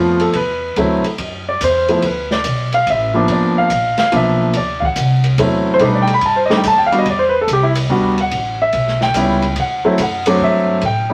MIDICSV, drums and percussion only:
0, 0, Header, 1, 2, 480
1, 0, Start_track
1, 0, Tempo, 419287
1, 875, Time_signature, 3, 2, 24, 8
1, 12745, End_track
2, 0, Start_track
2, 0, Title_t, "Drums"
2, 224, Note_on_c, 9, 51, 46
2, 338, Note_off_c, 9, 51, 0
2, 382, Note_on_c, 9, 51, 54
2, 391, Note_on_c, 9, 36, 19
2, 497, Note_off_c, 9, 51, 0
2, 505, Note_off_c, 9, 36, 0
2, 874, Note_on_c, 9, 36, 18
2, 874, Note_on_c, 9, 51, 46
2, 988, Note_off_c, 9, 51, 0
2, 989, Note_off_c, 9, 36, 0
2, 1194, Note_on_c, 9, 51, 44
2, 1309, Note_off_c, 9, 51, 0
2, 1353, Note_on_c, 9, 51, 56
2, 1358, Note_on_c, 9, 36, 24
2, 1468, Note_off_c, 9, 51, 0
2, 1473, Note_off_c, 9, 36, 0
2, 1839, Note_on_c, 9, 44, 59
2, 1839, Note_on_c, 9, 51, 69
2, 1840, Note_on_c, 9, 36, 23
2, 1954, Note_off_c, 9, 44, 0
2, 1954, Note_off_c, 9, 51, 0
2, 1955, Note_off_c, 9, 36, 0
2, 2157, Note_on_c, 9, 51, 39
2, 2271, Note_off_c, 9, 51, 0
2, 2315, Note_on_c, 9, 51, 51
2, 2321, Note_on_c, 9, 36, 16
2, 2429, Note_off_c, 9, 51, 0
2, 2435, Note_off_c, 9, 36, 0
2, 2643, Note_on_c, 9, 38, 49
2, 2758, Note_off_c, 9, 38, 0
2, 2794, Note_on_c, 9, 44, 48
2, 2794, Note_on_c, 9, 51, 60
2, 2800, Note_on_c, 9, 36, 16
2, 2908, Note_off_c, 9, 44, 0
2, 2908, Note_off_c, 9, 51, 0
2, 2914, Note_off_c, 9, 36, 0
2, 3119, Note_on_c, 9, 51, 44
2, 3234, Note_off_c, 9, 51, 0
2, 3282, Note_on_c, 9, 36, 25
2, 3283, Note_on_c, 9, 51, 53
2, 3397, Note_off_c, 9, 36, 0
2, 3397, Note_off_c, 9, 51, 0
2, 3754, Note_on_c, 9, 51, 52
2, 3759, Note_on_c, 9, 36, 22
2, 3869, Note_off_c, 9, 51, 0
2, 3874, Note_off_c, 9, 36, 0
2, 4234, Note_on_c, 9, 44, 49
2, 4234, Note_on_c, 9, 51, 59
2, 4237, Note_on_c, 9, 36, 18
2, 4349, Note_off_c, 9, 44, 0
2, 4349, Note_off_c, 9, 51, 0
2, 4352, Note_off_c, 9, 36, 0
2, 4551, Note_on_c, 9, 51, 46
2, 4554, Note_on_c, 9, 38, 52
2, 4665, Note_off_c, 9, 51, 0
2, 4669, Note_off_c, 9, 38, 0
2, 4716, Note_on_c, 9, 51, 58
2, 4717, Note_on_c, 9, 36, 25
2, 4830, Note_off_c, 9, 51, 0
2, 4832, Note_off_c, 9, 36, 0
2, 5191, Note_on_c, 9, 51, 52
2, 5199, Note_on_c, 9, 36, 16
2, 5306, Note_off_c, 9, 51, 0
2, 5313, Note_off_c, 9, 36, 0
2, 5519, Note_on_c, 9, 36, 61
2, 5633, Note_off_c, 9, 36, 0
2, 5674, Note_on_c, 9, 44, 55
2, 5674, Note_on_c, 9, 51, 60
2, 5679, Note_on_c, 9, 36, 19
2, 5789, Note_off_c, 9, 44, 0
2, 5789, Note_off_c, 9, 51, 0
2, 5793, Note_off_c, 9, 36, 0
2, 5995, Note_on_c, 9, 51, 48
2, 6109, Note_off_c, 9, 51, 0
2, 6158, Note_on_c, 9, 51, 60
2, 6159, Note_on_c, 9, 36, 24
2, 6272, Note_off_c, 9, 51, 0
2, 6273, Note_off_c, 9, 36, 0
2, 6632, Note_on_c, 9, 51, 52
2, 6638, Note_on_c, 9, 36, 21
2, 6746, Note_off_c, 9, 51, 0
2, 6752, Note_off_c, 9, 36, 0
2, 6954, Note_on_c, 9, 51, 46
2, 7069, Note_off_c, 9, 51, 0
2, 7112, Note_on_c, 9, 51, 55
2, 7117, Note_on_c, 9, 36, 24
2, 7226, Note_off_c, 9, 51, 0
2, 7232, Note_off_c, 9, 36, 0
2, 7441, Note_on_c, 9, 38, 60
2, 7556, Note_off_c, 9, 38, 0
2, 7597, Note_on_c, 9, 44, 54
2, 7597, Note_on_c, 9, 51, 66
2, 7600, Note_on_c, 9, 36, 20
2, 7711, Note_off_c, 9, 44, 0
2, 7711, Note_off_c, 9, 51, 0
2, 7715, Note_off_c, 9, 36, 0
2, 7926, Note_on_c, 9, 51, 43
2, 8040, Note_off_c, 9, 51, 0
2, 8077, Note_on_c, 9, 51, 47
2, 8079, Note_on_c, 9, 36, 21
2, 8192, Note_off_c, 9, 51, 0
2, 8193, Note_off_c, 9, 36, 0
2, 8560, Note_on_c, 9, 36, 17
2, 8563, Note_on_c, 9, 44, 54
2, 8563, Note_on_c, 9, 51, 62
2, 8674, Note_off_c, 9, 36, 0
2, 8677, Note_off_c, 9, 44, 0
2, 8677, Note_off_c, 9, 51, 0
2, 8877, Note_on_c, 9, 51, 71
2, 8992, Note_off_c, 9, 51, 0
2, 9038, Note_on_c, 9, 36, 18
2, 9152, Note_off_c, 9, 36, 0
2, 9361, Note_on_c, 9, 51, 42
2, 9476, Note_off_c, 9, 51, 0
2, 9517, Note_on_c, 9, 36, 19
2, 9517, Note_on_c, 9, 51, 51
2, 9632, Note_off_c, 9, 36, 0
2, 9632, Note_off_c, 9, 51, 0
2, 9989, Note_on_c, 9, 51, 57
2, 9996, Note_on_c, 9, 36, 22
2, 10103, Note_off_c, 9, 51, 0
2, 10111, Note_off_c, 9, 36, 0
2, 10162, Note_on_c, 9, 38, 27
2, 10277, Note_off_c, 9, 38, 0
2, 10313, Note_on_c, 9, 38, 47
2, 10428, Note_off_c, 9, 38, 0
2, 10465, Note_on_c, 9, 44, 51
2, 10465, Note_on_c, 9, 51, 65
2, 10472, Note_on_c, 9, 36, 19
2, 10579, Note_off_c, 9, 44, 0
2, 10579, Note_off_c, 9, 51, 0
2, 10587, Note_off_c, 9, 36, 0
2, 10787, Note_on_c, 9, 51, 44
2, 10902, Note_off_c, 9, 51, 0
2, 10942, Note_on_c, 9, 51, 58
2, 10950, Note_on_c, 9, 36, 18
2, 11056, Note_off_c, 9, 51, 0
2, 11064, Note_off_c, 9, 36, 0
2, 11424, Note_on_c, 9, 44, 53
2, 11424, Note_on_c, 9, 51, 69
2, 11429, Note_on_c, 9, 36, 19
2, 11539, Note_off_c, 9, 44, 0
2, 11539, Note_off_c, 9, 51, 0
2, 11543, Note_off_c, 9, 36, 0
2, 11743, Note_on_c, 9, 51, 74
2, 11857, Note_off_c, 9, 51, 0
2, 11907, Note_on_c, 9, 36, 19
2, 12021, Note_off_c, 9, 36, 0
2, 12379, Note_on_c, 9, 51, 47
2, 12386, Note_on_c, 9, 36, 22
2, 12494, Note_off_c, 9, 51, 0
2, 12501, Note_off_c, 9, 36, 0
2, 12745, End_track
0, 0, End_of_file